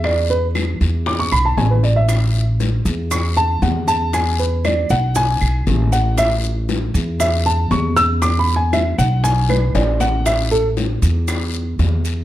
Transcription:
Already playing: upright bass E2
0.04 grand piano D5, high bongo, long guiro, claves
0.30 grand piano B4, high bongo
0.55 high bongo, short guiro, claves
0.80 upright bass E2, high bongo, short guiro
1.06 grand piano D6, high bongo, long guiro
1.19 grand piano C#6
1.32 upright bass B1, grand piano B5, high bongo, claves
1.45 grand piano A5
1.57 upright bass A1, grand piano G#5, high bongo, low bongo, short guiro
1.71 grand piano B4
1.83 grand piano D5, short guiro
1.96 grand piano E5
2.09 high bongo, long guiro, claves, maracas
2.34 high bongo, maracas
2.60 high bongo, short guiro, maracas
2.85 upright bass E2, high bongo, short guiro, maracas
3.11 grand piano C#6, high bongo, long guiro, claves, maracas
3.37 grand piano A5, high bongo, maracas
3.62 upright bass E2, grand piano F#5, high bongo, low bongo, short guiro, maracas
3.88 grand piano A5, short guiro, maracas
4.13 grand piano G#5, high bongo, long guiro, claves, maracas
4.39 grand piano B4, high bongo, maracas
4.65 grand piano D5, high bongo, short guiro, claves, maracas
4.90 upright bass B1, grand piano F#5, high bongo, short guiro, maracas
5.15 grand piano G#5, high bongo, long guiro, maracas
5.41 upright bass B1, high bongo, claves, maracas
5.67 upright bass A1, high bongo, low bongo, short guiro, maracas
5.92 grand piano F#5, short guiro, maracas
6.18 grand piano E5, high bongo, long guiro, claves, maracas
6.43 high bongo, maracas
6.69 high bongo, short guiro, maracas
6.94 upright bass E2, high bongo, short guiro, maracas
7.20 grand piano E5, high bongo, long guiro, claves, maracas
7.45 grand piano A5, high bongo, maracas
7.71 upright bass E2, grand piano C#6, high bongo, low bongo, short guiro, maracas
7.97 grand piano E6, short guiro, maracas
8.22 grand piano D6, high bongo, long guiro, claves, maracas
8.39 grand piano B5
8.48 high bongo, maracas
8.56 grand piano G#5
8.73 grand piano E5, high bongo, short guiro, claves, maracas
8.98 upright bass B1, grand piano F#5, high bongo, short guiro, maracas
9.24 grand piano G#5, high bongo, long guiro, maracas
9.49 grand piano B4, high bongo, claves, maracas
9.75 upright bass A1, grand piano D5, high bongo, short guiro, maracas
10.00 grand piano F#5, low bongo, short guiro, maracas
10.26 grand piano E5, high bongo, long guiro, claves, maracas
10.51 grand piano A4, high bongo, maracas
10.77 high bongo, short guiro, maracas
11.02 upright bass E2, high bongo, short guiro, maracas
11.28 high bongo, long guiro, claves, maracas
11.53 high bongo, maracas
11.79 upright bass E2, high bongo, low bongo, short guiro, maracas
12.05 short guiro, maracas

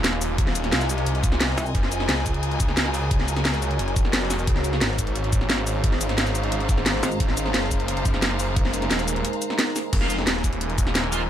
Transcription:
Already playing: detuned saw bass D#1, ambient pad F4 C5 F5, string section A#4 D#5
0.04 string section G#5, snare, closed hi-hat
0.13 snare
0.21 open hi-hat, cabasa
0.38 kick, closed hi-hat
0.47 snare
0.55 closed hi-hat, cabasa
0.64 snare, closed hi-hat
0.72 detuned saw bass C2, snare, closed hi-hat
0.81 cabasa
0.89 closed hi-hat, cabasa
0.98 closed hi-hat
1.06 detuned saw bass C2, closed hi-hat
1.15 closed hi-hat
1.23 kick, closed hi-hat, cabasa
1.32 snare
1.41 snare, closed hi-hat
1.58 wobble bass C2, snare, open hi-hat, cabasa
1.66 cabasa
1.75 detuned saw bass F#1, ambient pad F#4 A#4 C#5, kick, closed hi-hat
1.83 snare
1.92 closed hi-hat, cabasa
2.00 snare
2.09 detuned saw bass C#2, snare, closed hi-hat
2.26 kick, closed hi-hat, cabasa
2.34 closed hi-hat
2.43 closed hi-hat
2.51 closed hi-hat
2.60 kick, closed hi-hat, cabasa
2.69 snare
2.77 snare, closed hi-hat
2.86 snare
2.94 open hi-hat, cabasa
3.11 kick, closed hi-hat
3.20 snare
3.28 closed hi-hat, cabasa
3.37 snare, closed hi-hat
3.45 detuned saw bass C#2, snare, closed hi-hat
3.54 cabasa
3.62 closed hi-hat, cabasa
3.71 closed hi-hat
3.79 detuned saw bass F#1, closed hi-hat
3.88 closed hi-hat
3.96 kick, closed hi-hat, cabasa
4.05 snare
4.13 snare, closed hi-hat
4.26 detuned saw bass F1
4.30 snare, open hi-hat, cabasa
4.39 cabasa
4.47 detuned saw bass C#2, ambient pad C#4 G#4 D#5, string section C5, kick, closed hi-hat
4.56 snare
4.64 string section F5, closed hi-hat, cabasa
4.73 snare
4.81 detuned saw bass G#1, snare, closed hi-hat
4.98 kick, closed hi-hat, cabasa
5.07 closed hi-hat
5.16 closed hi-hat
5.24 closed hi-hat
5.33 string section A#5, kick, closed hi-hat, cabasa
5.41 snare
5.50 snare, closed hi-hat
5.58 snare
5.67 open hi-hat, cabasa
5.84 kick, closed hi-hat
5.92 snare
6.01 closed hi-hat, cabasa
6.09 snare, closed hi-hat
6.18 detuned saw bass G#1, snare, closed hi-hat
6.26 cabasa
6.35 closed hi-hat, cabasa
6.43 closed hi-hat
6.52 detuned saw bass G#1, closed hi-hat
6.60 closed hi-hat
6.69 kick, closed hi-hat, cabasa
6.78 snare
6.86 snare, closed hi-hat
7.03 wobble bass G#1, snare, open hi-hat, cabasa
7.12 cabasa
7.20 detuned saw bass G#1, ambient pad G#3 D#4 A#4, kick, closed hi-hat
7.29 snare
7.37 closed hi-hat, cabasa
7.46 snare
7.54 detuned saw bass F#1, snare, closed hi-hat
7.71 kick, closed hi-hat, cabasa
7.80 closed hi-hat
7.88 closed hi-hat
7.97 closed hi-hat
8.05 kick, closed hi-hat, cabasa
8.14 snare
8.22 snare, closed hi-hat
8.31 snare
8.39 open hi-hat, cabasa
8.56 kick, closed hi-hat
8.65 snare
8.74 closed hi-hat, cabasa
8.82 snare, closed hi-hat
8.91 detuned saw bass D#1, snare, closed hi-hat
8.99 closed hi-hat, cabasa
9.08 closed hi-hat, cabasa
9.16 closed hi-hat
9.25 closed hi-hat
9.33 closed hi-hat
9.42 closed hi-hat, cabasa
9.50 snare
9.59 snare, closed hi-hat
9.76 snare, open hi-hat, cabasa
9.93 detuned saw bass F1, ambient pad F4 C5 F5, string section A#4, kick, closed hi-hat, crash
10.01 distorted electric guitar F4 C5 F5, snare
10.05 string section G#5
10.10 closed hi-hat, cabasa
10.18 string section D#5, snare
10.27 detuned saw bass D#1, snare, closed hi-hat
10.44 kick, closed hi-hat, cabasa
10.53 closed hi-hat
10.61 closed hi-hat
10.70 closed hi-hat
10.78 kick, closed hi-hat, cabasa
10.87 snare
10.95 snare, closed hi-hat
11.04 snare
11.12 distorted electric guitar F4 C5 F5, open hi-hat, cabasa

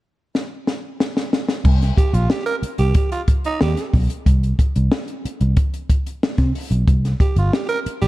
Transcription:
0.35 snare
0.67 snare
1.00 snare
1.17 snare
1.33 snare
1.48 snare
1.65 picked electric bass C2, kick, crash
1.82 snare, closed hi-hat
1.97 tenor saxophone G4, kick, closed hi-hat
2.13 picked electric bass A#1, tenor saxophone F4, closed hi-hat
2.30 tenor saxophone G4, snare
2.46 tenor saxophone A#4, closed hi-hat
2.62 muted picked electric bass stroke, closed hi-hat
2.78 picked electric bass C2, tenor saxophone G4, closed hi-hat
2.94 tenor saxophone G4, kick, closed hi-hat
3.12 tenor saxophone F4, closed hi-hat
3.28 kick, closed hi-hat
3.44 tenor saxophone D#4, closed hi-hat
3.61 picked electric bass D#2, tenor saxophone G4, snare
3.77 snare, closed hi-hat
3.94 picked electric bass B1, kick, open hi-hat
4.10 closed hi-hat
4.26 picked electric bass C2, kick, closed hi-hat
4.43 closed hi-hat
4.59 kick, closed hi-hat
4.76 picked electric bass C2, closed hi-hat
4.92 snare
5.08 closed hi-hat
5.25 muted picked electric bass stroke, closed hi-hat
5.41 picked electric bass C2, closed hi-hat
5.57 kick, closed hi-hat
5.74 closed hi-hat
5.90 kick, closed hi-hat
6.07 closed hi-hat
6.23 snare
6.38 picked electric bass C3, kick, snare, closed hi-hat
6.55 open hi-hat
6.71 picked electric bass B1, closed hi-hat
6.87 picked electric bass C2, kick, closed hi-hat
7.05 snare, closed hi-hat
7.20 tenor saxophone G4, kick, closed hi-hat
7.36 picked electric bass G1, tenor saxophone F4, closed hi-hat
7.53 tenor saxophone G4, snare
7.69 tenor saxophone A#4, closed hi-hat
7.86 muted picked electric bass stroke, closed hi-hat
8.01 picked electric bass A#1, tenor saxophone G4, closed hi-hat

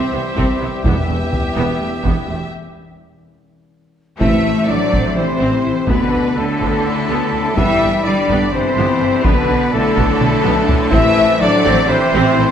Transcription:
Already playing: trombone section E3 G3, viola section C4, french horn section C4 E4, woodwind section C4 E4 G4 E5, violin section G4 E5, trumpet C5
0.12 double bass section C2, cello section C3, viola section B3
0.36 double bass section C2, cello section C3, viola section C4, taiko
0.60 double bass section C2, cello section C3, viola section B3
0.84 double bass section E1, timpani E2, cello section E2, trombone section E3, french horn section B3 E4, woodwind section B3, viola section B3, trumpet G4, violin section E5, taiko
1.09 double bass section E1, cello section E2, viola section A3
1.33 taiko low
1.56 double bass section E1, cello section E2, viola section B3
1.80 double bass section E1, cello section E2, viola section A3
2.03 double bass section E1, cello section E2, viola section B3, taiko
2.28 double bass section E1, cello section E2, viola section A3
4.19 double bass section A1, timpani A2, trombone section E3, cello section A3, viola section C4 C5, woodwind section C4 E4 A4 E5, french horn section E4, flute E5, trumpet E5, violin section E5, taiko
4.43 double bass section A1, viola section E4
4.68 double bass section A1, trombone section D3, cello section F#3, french horn section D4, viola section A4, violin section D5, trumpet D5, flute D5
4.92 double bass section A1, viola section C4, taiko
5.15 double bass section A1, trombone section C3, cello section E3, french horn section C4, viola section E4, violin section C5, trumpet C5, flute C5
5.39 double bass section A1, viola section C4
5.65 double bass section A1, viola section E4
5.87 double bass section D2, trombone section B2, cello section D3, french horn section B3, viola section B3 A4, woodwind section D4 F#4 D5 B5, violin section B4, trumpet B4, flute B4, taiko
6.12 double bass section D2, viola section D4
6.35 double bass section D2, trombone section A2, cello section D3, french horn section A3, viola section F#4, flute A4, trumpet A4, violin section A4
6.61 double bass section D2, viola section B3, taiko
6.86 double bass section D2, viola section D4
7.09 double bass section D2, viola section B3
7.32 double bass section D2, viola section D4
7.55 double bass section G1, trombone section E3, cello section G3, viola section B3, french horn section E4, woodwind section G4, flute E5, violin section E5, trumpet E5, taiko
7.82 double bass section G1, viola section D4
8.04 double bass section G1, trombone section D3, cello section G3, french horn section D4, viola section G4, trumpet D5, violin section D5, flute D5
8.29 double bass section G1, viola section B3, taiko
8.52 double bass section G1, trombone section C3, cello section E3, french horn section C4, viola section D4, trumpet C5, flute C5, violin section C5
8.76 double bass section G1, viola section B3
9.00 double bass section G1, viola section D4
9.24 double bass section B1, trombone section B2, cello section D3, viola section B3 D5, french horn section B3, woodwind section F#4, trumpet B4, flute B4, violin section B4, taiko
9.49 double bass section B1, viola section D4
9.72 double bass section B1, trombone section A2, cello section D3, french horn section A3, viola section F#4, trumpet A4, violin section A4, flute A4
9.97 double bass section B1, viola section B3, taiko
10.21 double bass section B1, viola section D4, taiko mid
10.43 double bass section B1, viola section B3, taiko high
10.68 double bass section B1, viola section D4, taiko low
10.91 double bass section A1, timpani A2, trombone section E3, cello section A3, viola section C4 C5, woodwind section C4 A4 C5 E5, french horn section E4, trumpet E5, flute E5, violin section E5, taiko
11.17 double bass section A1, viola section E4
11.39 double bass section A1, trombone section D3, cello section F#3, french horn section D4, viola section A4, trumpet D5, flute D5, violin section D5
11.65 double bass section A1, viola section C4, taiko
11.87 double bass section A1, trombone section C3, cello section E3, french horn section C4, viola section E4, trumpet C5, violin section C5, flute C5
12.14 double bass section A1, viola section C4
12.38 double bass section A1, viola section E4

